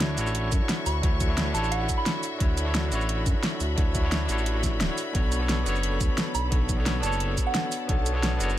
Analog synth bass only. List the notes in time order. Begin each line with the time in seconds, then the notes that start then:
Already playing: D2
0.17 A1
0.52 F#2
0.86 D2
1.03 D2
1.54 A1
2.40 D2
2.92 A1
3.26 F#2
3.60 D2
3.78 D2
4.29 A1
4.81 D1
5.15 B1
5.66 F#1
6.00 D2
6.34 B1
6.52 B1
7.03 F#1
7.89 B1
8.40 F#1